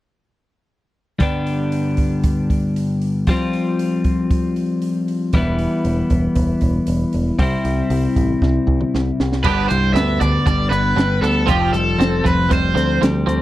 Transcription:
1.19 clean electric guitar G2 D3 G3 B3 D4, kick, open hi-hat
1.23 clean electric guitar G4
1.47 open hi-hat
1.72 open hi-hat
1.97 kick, open hi-hat
2.24 kick, open hi-hat
2.50 kick, open hi-hat
2.76 open hi-hat
3.02 open hi-hat
3.27 clean electric guitar F3 G3 C4 F4, kick, open hi-hat
3.53 open hi-hat
3.79 open hi-hat
4.04 kick, open hi-hat
4.31 kick, open hi-hat
4.56 open hi-hat
4.82 open hi-hat
5.08 open hi-hat
5.33 picked electric bass E1, clean electric guitar E3 G3 B3, kick, open hi-hat
5.37 clean electric guitar E4
5.59 open hi-hat
5.85 picked electric bass E1, open hi-hat
6.10 picked electric bass E1, kick, open hi-hat
6.35 picked electric bass E1, kick, open hi-hat
6.61 picked electric bass E1, kick, open hi-hat
6.87 picked electric bass E1, open hi-hat
7.13 picked electric bass E1, open hi-hat
7.39 picked electric bass C2, clean electric guitar C3 G3 C4 E4, kick, open hi-hat
7.65 picked electric bass C2, open hi-hat
7.90 picked electric bass C2, open hi-hat
8.16 picked electric bass A1, kick, open hi-hat
8.42 picked electric bass C2, kick, snare
8.67 picked electric bass C2, kick
8.81 mid tom
8.95 picked electric bass C2, snare
9.20 picked electric bass C2, snare
9.32 snare
9.44 picked electric bass G1, clean electric guitar G2 B3 D4 G4, overdriven electric guitar B4, kick, crash
9.69 picked electric bass C2, clean electric guitar G3 B3 D4, overdriven electric guitar C5, closed hi-hat
9.94 picked electric bass D2, clean electric guitar B3 D4, overdriven electric guitar E5, snare, closed hi-hat
9.98 clean electric guitar B3
10.20 clean electric guitar D3 B3 D4, overdriven electric guitar D5, kick, closed hi-hat
10.46 picked electric bass G1, clean electric guitar G3 B3 D4, overdriven electric guitar D5, kick, closed hi-hat
10.70 picked electric bass G1, clean electric guitar B3 D4, overdriven electric guitar B4, closed hi-hat
10.96 picked electric bass G1, clean electric guitar G3 B3 D4, snare, closed hi-hat
11.21 picked electric bass D2, clean electric guitar B3 D4, overdriven electric guitar A4, closed hi-hat
11.46 picked electric bass F1, clean electric guitar F3 C4 F4, overdriven electric guitar G4, kick, closed hi-hat
11.73 picked electric bass F1, clean electric guitar F3 G3 C4, overdriven electric guitar A4, closed hi-hat
11.98 picked electric bass F1, clean electric guitar F3 C4, snare, closed hi-hat
12.24 picked electric bass F1, clean electric guitar F3 C4, overdriven electric guitar B4, kick, closed hi-hat
12.49 picked electric bass F1, clean electric guitar F3 G3 C4, overdriven electric guitar C5, kick, closed hi-hat
12.74 picked electric bass D2, clean electric guitar F3 C4, closed hi-hat
13.01 picked electric bass D2, clean electric guitar F3 G3 C4, snare, closed hi-hat
13.26 picked electric bass D2, clean electric guitar F3 C4, closed hi-hat

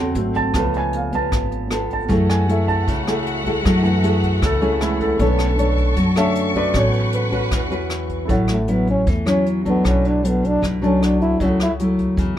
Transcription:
Already playing: upright bass E2, nylon-string guitar C#3 C4 F#4 A4, grand piano F#3 B3 C#4 C#5 E5 F#5
0.15 upright bass G#1, grand piano F#3 A3 C4, closed hi-hat
0.34 grand piano A5, kick, closed hi-hat
0.54 upright bass C#2, nylon-string guitar C#3 B3 F4 A4, grand piano F3 A3 B3, kick, cross-stick, closed hi-hat
0.74 grand piano G#5, closed hi-hat
0.93 grand piano F5, closed hi-hat
1.12 nylon-string guitar B3 F4, grand piano A5, kick, closed hi-hat
1.32 upright bass G#1, kick, cross-stick, closed hi-hat
1.52 closed hi-hat
1.71 nylon-string guitar B3 F4 A4, cross-stick, closed hi-hat
1.90 grand piano A5, kick, closed hi-hat
2.08 upright bass F#2, grand piano E3 A3, nylon-string guitar F#3 A3 E4 G#4, string section F#4 E5 F#5, kick, closed hi-hat
2.30 grand piano G#5, cross-stick, closed hi-hat
2.48 nylon-string guitar A3 E4 G#4, grand piano E5, closed hi-hat
2.68 grand piano A5, kick, closed hi-hat
2.88 upright bass C#2, nylon-string guitar C#3, kick, closed hi-hat
3.07 nylon-string guitar A3 E4 G#4, cross-stick, closed hi-hat
3.26 closed hi-hat
3.46 nylon-string guitar A3 E4 G#4, kick, closed hi-hat
3.65 upright bass F#2, nylon-string guitar F#3 A3 E4 G#4, kick, cross-stick, closed hi-hat
3.83 grand piano E3 A3, closed hi-hat
4.03 nylon-string guitar A3 E4 G#4, closed hi-hat
4.23 kick, closed hi-hat
4.42 upright bass C#2, nylon-string guitar C#3, grand piano A4, kick, cross-stick, closed hi-hat
4.61 nylon-string guitar A3 E4 G#4, grand piano C#4, closed hi-hat
4.80 grand piano E3 G#3 A3 E4, cross-stick, closed hi-hat
5.00 grand piano A4, kick, closed hi-hat
5.19 upright bass B1, grand piano D3 A3 C#4, nylon-string guitar B3 D4 A4 C#5, string section A4 C#6, kick, closed hi-hat
5.39 cross-stick, closed hi-hat
5.58 nylon-string guitar D4 A4 C#5, closed hi-hat
5.78 kick, closed hi-hat
5.96 upright bass F#2, nylon-string guitar F#3, kick, closed hi-hat
6.16 grand piano D3 A3 C#4 E5, nylon-string guitar D4 A4 C#5, cross-stick, closed hi-hat
6.35 closed hi-hat
6.55 nylon-string guitar C#4 F#4 B4, grand piano D5, kick, closed hi-hat
6.73 upright bass A1, grand piano F#3 B3 C#4, nylon-string guitar A3, string section B4 F#5, kick, cross-stick, closed hi-hat
6.77 grand piano C#5
6.93 closed hi-hat
7.12 grand piano B4, closed hi-hat
7.32 nylon-string guitar C#4 F#4 B4, kick, closed hi-hat
7.51 upright bass E2, nylon-string guitar E3, kick, cross-stick, closed hi-hat
7.70 nylon-string guitar C#4 F#4 B4, closed hi-hat
7.90 cross-stick, closed hi-hat
8.09 kick, closed hi-hat
8.25 upright bass A1, grand piano E4 A4, closed hi-hat
8.29 nylon-string guitar A2 F#3 C#4 E4, grand piano C#5 F#5, kick
8.48 trombone A3, cross-stick, closed hi-hat
8.68 nylon-string guitar F#3 C#4 E4, closed hi-hat
8.72 trombone B3
8.87 trombone C#4, kick, closed hi-hat
9.07 upright bass E2, nylon-string guitar E3, trombone A3, kick, closed hi-hat
9.26 nylon-string guitar F#3 C#4 E4, trombone C#4, cross-stick, closed hi-hat
9.46 closed hi-hat
9.65 nylon-string guitar F#3 A3 D4, trombone B3, kick, closed hi-hat
9.81 upright bass B1, nylon-string guitar B2, grand piano E4 A4, kick, cross-stick, closed hi-hat
9.85 trombone C#4, grand piano D5 F#5
10.05 trombone D4, closed hi-hat
10.23 nylon-string guitar F#3 A3 D4, closed hi-hat
10.28 trombone B3
10.44 trombone D4, kick, closed hi-hat
10.62 upright bass B1, nylon-string guitar B2, kick, cross-stick, closed hi-hat
10.82 nylon-string guitar F#3 A3 D4, trombone C#4, closed hi-hat
11.00 trombone D4, grand piano E4 A4 D5 F#5, cross-stick, closed hi-hat
11.21 trombone E4, kick, closed hi-hat
11.37 upright bass C#2, nylon-string guitar C#3 F#3, grand piano E4 A4, kick, closed hi-hat
11.41 nylon-string guitar A3 E4, trombone C#4, grand piano C#5 F#5
11.60 trombone E4, cross-stick, closed hi-hat
11.79 nylon-string guitar F#3 A3 E4, closed hi-hat
11.98 kick, closed hi-hat
12.17 upright bass E2, nylon-string guitar C#3, kick, closed hi-hat

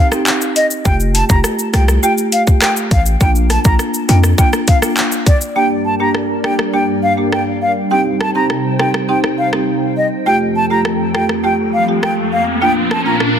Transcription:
0.12 marimba C4 D#4 G4, cross-stick, shaker
0.27 clap, shaker
0.41 shaker
0.56 flute D#5, closed hi-hat, shaker
0.71 shaker
0.85 808-style bass F1, marimba A3 F4 G4, flute G5, kick, shaker
1.00 shaker
1.15 flute A5, closed hi-hat, shaker
1.29 808-style bass F1, marimba A3 F4 G4, flute A#5, kick, shaker
1.44 cross-stick, shaker
1.59 shaker
1.73 808-style bass C2, marimba A3 F4 G4, flute G5, cross-stick, closed hi-hat, shaker
1.88 cross-stick, shaker
2.03 marimba A3 F4 G4, flute G5, shaker
2.18 shaker
2.32 flute F5, closed hi-hat, shaker
2.47 marimba A3 F4 G4, kick, shaker
2.62 flute G5, cross-stick, clap, shaker
2.77 shaker
2.91 808-style bass A1, flute F5, kick, closed hi-hat, shaker
3.06 shaker
3.20 808-style bass A#1, marimba A#3 D4 F4, flute G5, kick, shaker
3.35 shaker
3.50 flute A5, cross-stick, closed hi-hat, shaker
3.65 808-style bass A#1, marimba A#3 D4 F4, flute A#5, kick, shaker
3.79 cross-stick, shaker
3.94 shaker
4.09 808-style bass F2, marimba A#3 D4 F4, flute G5, closed hi-hat, shaker
4.24 cross-stick, shaker
4.38 marimba A#3 D4 F4, flute G5, kick, shaker
4.53 cross-stick, shaker
4.68 flute F5, kick, closed hi-hat, shaker
4.82 marimba A#3 D4 F4, cross-stick, shaker
4.97 clap, shaker
5.12 shaker
5.26 flute D5, kick, closed hi-hat, shaker
5.41 shaker
5.56 analog synth pad G2 G3 D4 A#4 D5, marimba A#3 D4 G4, flute G5
5.85 flute A5
6.00 marimba A#3 D4 G4, flute A#5
6.15 cross-stick
6.44 marimba A#3 D4 G4, flute G5, cross-stick
6.59 cross-stick
6.73 marimba A#3 D4 G4, flute G5
7.03 flute F5
7.17 marimba A#3 D4 G4
7.32 flute G5, cross-stick
7.62 flute F5
7.91 analog synth pad C3 D#4 C5 G5, marimba C4 D#4 G4, flute G5
8.21 flute A5, cross-stick
8.35 marimba C4 D#4 G4, flute A#5
8.50 cross-stick
8.79 marimba C4 D#4 G4, flute G5, cross-stick
8.94 cross-stick
9.09 marimba C4 D#4 G4, flute G5
9.24 cross-stick
9.38 flute F5
9.53 marimba C4 D#4 G4, cross-stick
9.97 flute D#5
10.26 analog synth pad F2 F3 C4 A4 G5, marimba A3 F4 G4, flute G5, riser
10.56 flute A5
10.70 marimba A3 F4 G4, flute A#5
10.85 cross-stick
11.15 marimba A3 F4 G4, flute G5, cross-stick
11.29 cross-stick
11.44 marimba A3 F4 G4, flute G5
11.73 flute F5
11.88 marimba A3 F4 G4
12.03 flute G5, cross-stick
12.32 flute F5
12.62 analog synth pad A#2 D4 A#4 F5, marimba A#3 D4 F4, flute G5
12.91 flute A5, cross-stick
13.06 marimba A#3 D4 F4, flute A#5
13.20 cross-stick

